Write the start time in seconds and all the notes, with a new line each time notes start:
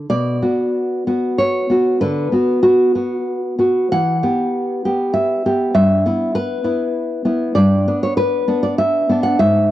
0.10 B2 D5
0.42 B3 F#4
1.07 B3 F#4
1.38 C#5
1.70 B3 F#4
2.01 D3 B4
2.32 B3 F#4
2.63 F#4
2.95 B3 F#4
3.59 B3 F#4
3.92 E3 F#5
4.23 B3 G4
4.85 B3 G4
5.14 E5
5.46 B3 G4
5.75 G2 E5
6.06 B3 E4
6.35 B4
6.64 B3 E4
7.25 B3 E4
7.55 G2 D5
7.88 B3 D4
8.03 C#5
8.17 B4
8.48 B3 D4
8.63 D5
8.78 E5
9.09 B3 D4
9.23 F#5
9.39 G#2 E5